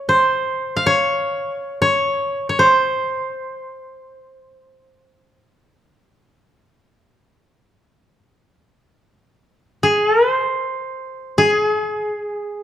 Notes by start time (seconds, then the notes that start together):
Already playing: C#5
0.09 C5
0.77 F5
0.86 C#5
1.82 C#5
2.49 C#5
2.59 C5
9.83 G#4
10.32 C5
11.38 G#4